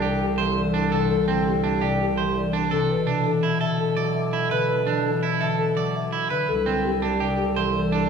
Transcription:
0.00 2.78 C2 medium
0.00 0.91 C3 medium
0.00 1.27 D3 medium
0.00 1.62 A3 medium
0.00 0.73 C4 medium
0.00 0.25 G4 medium
0.00 2.68 A4 medium
0.00 0.26 D5 medium
0.21 0.44 G4 medium
0.38 2.17 E3 medium
0.38 0.61 C5 medium
0.57 0.80 D5 medium
0.74 2.53 C4 medium
0.74 0.97 D4 medium
0.92 1.81 C3 medium
0.92 1.15 A4 medium
0.92 1.09 A4 medium
1.10 1.33 A4 medium
1.28 2.91 D3 medium
1.28 1.51 C4 medium
1.47 1.70 G4 medium
1.64 5.54 A3 medium
1.64 1.87 D4 medium
1.81 2.71 C3 medium
1.81 2.05 G4 medium
1.81 2.05 D5 medium
2.01 2.23 G4 medium
2.17 2.91 E3 medium
2.17 2.41 C5 medium
2.37 2.59 D5 medium
2.53 2.91 C4 medium
2.53 2.77 D4 medium
2.71 2.91 C3 medium
2.71 2.95 A4 medium
2.90 6.38 B2 medium
2.90 6.27 A4 medium
2.90 3.13 B4 medium
3.07 4.86 E3 medium
3.07 3.31 D4 medium
3.26 3.49 A4 medium
3.43 5.22 B3 medium
3.43 3.60 E4 medium
3.61 4.49 D3 medium
3.61 3.84 A4 medium
3.61 3.85 E5 medium
3.80 4.03 A4 medium
3.97 5.76 F#3 medium
3.97 4.20 D5 medium
4.15 4.38 E5 medium
4.33 4.51 E4 medium
4.51 5.40 D3 medium
4.51 4.74 B4 medium
4.51 4.68 B4 medium
4.69 4.92 B4 medium
4.87 6.50 E3 medium
4.87 5.10 D4 medium
5.05 5.28 A4 medium
5.23 6.50 B3 medium
5.23 5.46 E4 medium
5.41 6.29 D3 medium
5.41 5.64 A4 medium
5.41 5.64 E5 medium
5.58 5.82 A4 medium
5.77 6.50 F#3 medium
5.77 6.00 D5 medium
5.95 6.18 E5 medium
6.12 6.30 E4 medium
6.30 6.50 D3 medium
6.30 6.54 B4 medium
6.48 8.10 C2 medium
6.48 6.72 A4 medium
6.48 8.10 A4 medium
6.66 8.10 D3 medium
6.66 6.90 C4 medium
6.85 7.08 G4 medium
7.02 8.10 A3 medium
7.02 7.26 D4 medium
7.20 8.09 C3 medium
7.20 7.44 G4 medium
7.20 7.44 D5 medium
7.38 7.62 G4 medium
7.56 8.10 E3 medium
7.56 7.80 C5 medium
7.75 7.98 D5 medium
7.92 8.10 D4 medium

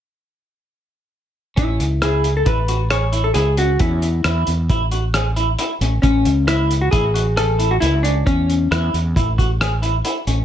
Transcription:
1.56 1.77 A1 medium
1.56 1.80 C#4 medium
1.56 2.04 E4 medium
1.56 kick medium
1.56 closed hi-hat medium
1.79 2.43 C#2 medium
1.79 closed hi-hat medium
2.02 2.26 E4 medium
2.02 2.34 G#4 medium
2.02 cross-stick medium
2.02 closed hi-hat medium
2.24 closed hi-hat soft
2.37 2.48 A4 medium
2.45 3.31 A1 medium
2.45 2.57 E4 medium
2.45 2.91 B4 medium
2.45 kick medium
2.45 closed hi-hat medium
2.68 2.80 F#4 medium
2.68 closed hi-hat medium
2.90 3.02 G#4 medium
2.90 3.22 C#5 medium
2.90 cross-stick medium
2.90 closed hi-hat medium
3.12 3.24 E4 medium
3.12 closed hi-hat soft
3.24 3.34 A4 medium
3.34 3.76 C#2 medium
3.34 3.47 E4 medium
3.34 3.58 G#4 medium
3.34 closed hi-hat medium
3.57 3.70 C#4 medium
3.57 3.79 F#4 medium
3.57 closed hi-hat medium
3.79 4.21 E2 medium
3.79 4.03 C#4 medium
3.79 4.22 E4 medium
3.79 kick medium
3.79 closed hi-hat medium
4.02 closed hi-hat medium
4.24 4.45 E2 medium
4.24 4.48 E4 medium
4.24 cross-stick medium
4.24 closed hi-hat medium
4.47 4.68 E2 medium
4.47 closed hi-hat soft
4.69 5.55 A1 medium
4.69 4.82 E4 medium
4.69 kick medium
4.69 closed hi-hat medium
4.91 5.03 F#4 medium
4.91 closed hi-hat soft
5.14 5.26 G#4 medium
5.14 cross-stick medium
5.14 closed hi-hat medium
5.36 5.48 E4 medium
5.36 closed hi-hat soft
5.59 5.71 E4 medium
5.59 closed hi-hat medium
5.80 6.01 A1 medium
5.80 5.93 C#4 medium
5.80 closed hi-hat medium
6.02 6.23 A1 medium
6.02 6.47 C#4 medium
6.02 6.27 C#4 medium
6.02 kick medium
6.02 closed hi-hat medium
6.25 6.88 C#2 medium
6.25 closed hi-hat medium
6.47 6.82 E4 medium
6.47 6.71 E4 medium
6.47 cross-stick medium
6.47 closed hi-hat medium
6.71 closed hi-hat medium
6.81 6.91 F#4 medium
6.91 7.78 A1 medium
6.91 7.04 E4 medium
6.91 7.38 G#4 medium
6.91 kick medium
6.91 closed hi-hat medium
7.14 7.26 F#4 medium
7.14 closed hi-hat medium
7.36 7.48 G#4 medium
7.36 7.72 A4 medium
7.36 cross-stick medium
7.36 closed hi-hat medium
7.59 7.71 E4 medium
7.59 closed hi-hat soft
7.71 7.76 F#4 medium
7.80 8.22 C#2 medium
7.80 8.02 E4 medium
7.80 7.93 E4 medium
7.80 closed hi-hat medium
8.03 8.15 C#4 medium
8.03 8.26 D4 medium
8.03 closed hi-hat medium
8.26 8.67 E2 medium
8.26 8.49 C#4 medium
8.26 8.68 C#4 medium
8.26 kick medium
8.26 closed hi-hat medium
8.50 closed hi-hat soft
8.71 8.91 E2 medium
8.71 8.94 E4 medium
8.71 cross-stick medium
8.71 closed hi-hat medium
8.94 9.14 E2 medium
8.94 closed hi-hat soft
9.16 10.01 A1 medium
9.16 9.28 E4 medium
9.16 kick medium
9.16 closed hi-hat medium
9.38 9.50 F#4 medium
9.38 kick medium
9.38 closed hi-hat medium
9.61 9.72 G#4 medium
9.61 cross-stick loud
9.61 closed hi-hat medium
9.82 9.94 E4 medium
9.82 closed hi-hat soft
10.05 10.16 E4 medium
10.05 closed hi-hat medium
10.27 10.45 A1 medium
10.27 10.39 C#4 medium
10.27 closed hi-hat medium

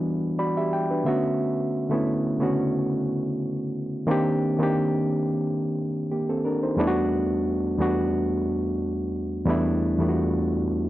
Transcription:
0.00 1.07 E3 loud
0.00 1.06 G3 medium
0.00 1.06 B3 medium
0.00 0.91 D4 medium
0.00 0.37 E4 medium
0.00 0.39 F#4 medium
0.39 0.56 F#4 soft
0.39 0.55 D5 medium
0.39 0.70 B5 medium
0.57 0.89 G4 medium
0.57 0.88 E5 medium
0.73 1.03 G5 medium
0.91 1.22 D4 soft
0.91 1.22 B4 medium
1.04 1.77 D3 medium
1.04 1.78 A3 medium
1.04 1.78 B3 medium
1.04 1.79 C#4 medium
1.04 1.37 E5 medium
1.08 1.79 F#4 medium
1.90 2.33 D3 medium
1.90 2.33 A3 medium
1.90 2.34 B3 medium
1.90 2.34 C#4 medium
1.94 2.35 E4 medium
2.39 2.46 C#3 medium
2.39 3.56 A3 medium
2.39 3.57 B3 medium
2.39 3.57 C#4 medium
2.43 3.59 D3 medium
2.43 3.58 F#4 medium
4.07 4.52 D#3 medium
4.07 4.52 A#3 medium
4.07 4.53 C4 medium
4.07 4.53 D4 medium
4.11 4.54 G4 loud
4.59 5.74 D#3 medium
4.59 5.75 A#3 medium
4.59 5.75 C4 medium
4.59 5.76 D4 medium
4.63 5.76 G4 medium
6.12 6.28 A#3 soft
6.12 6.28 G4 soft
6.29 6.44 C4 medium
6.29 6.44 A4 medium
6.45 6.62 D4 medium
6.45 6.62 A#4 medium
6.63 6.95 D#4 soft
6.63 6.95 C5 medium
6.76 7.65 E2 medium
6.76 7.65 G3 medium
6.76 7.66 A3 medium
6.76 7.66 B3 medium
6.76 7.67 D4 medium
6.81 6.86 E4 medium
6.87 7.70 F#4 loud
7.78 8.95 E2 medium
7.78 8.95 G3 medium
7.78 8.96 A3 medium
7.78 8.96 B3 medium
7.78 8.97 D4 medium
7.82 8.97 F#4 medium
9.46 9.91 E2 loud
9.46 9.91 G3 medium
9.46 9.91 A3 medium
9.46 9.92 B3 medium
9.46 9.92 D4 medium
9.50 9.93 E4 loud
9.98 10.89 E2 medium
9.98 10.89 G3 medium
9.98 10.89 A3 medium
9.98 10.89 B3 medium
9.98 10.89 D4 medium
10.03 10.07 F4 medium
10.09 10.89 F#4 medium

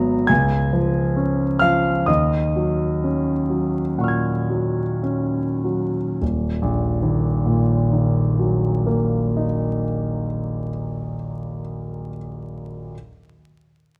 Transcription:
0.00 0.26 G#1 soft
0.00 0.32 F#3 soft
0.00 0.13 B3 soft
0.00 0.32 D#5 soft
0.00 0.25 A#5 medium
0.00 0.32 D#6 medium
0.00 0.29 A#6 medium
0.27 2.04 C#2 medium
0.27 1.56 G#5 medium
0.27 1.60 G#6 medium
0.73 1.43 F3 soft
1.16 1.89 C#4 soft
1.59 2.08 F3 soft
1.59 2.05 F5 medium
1.59 2.07 F6 medium
2.06 3.94 D#2 soft
2.06 5.00 D#5 medium
2.06 5.03 D#6 medium
2.56 3.31 F#3 soft
3.04 3.79 C#4 soft
3.50 4.29 F#3 soft
3.98 4.82 A#2 soft
3.98 6.17 F#5 soft
3.98 6.18 C#6 soft
4.04 6.20 F6 soft
4.08 6.22 G#6 soft
4.50 5.38 F#3 soft
5.03 5.97 C#4 soft
5.64 6.22 F#3 soft
6.22 9.43 D#1 soft
6.62 9.84 A#1 soft
7.03 10.24 D#2 soft
7.46 10.67 A#2 soft
7.92 11.13 D#3 soft
8.39 11.61 F#3 soft
8.87 12.08 A#3 soft
9.37 12.17 D#4 soft

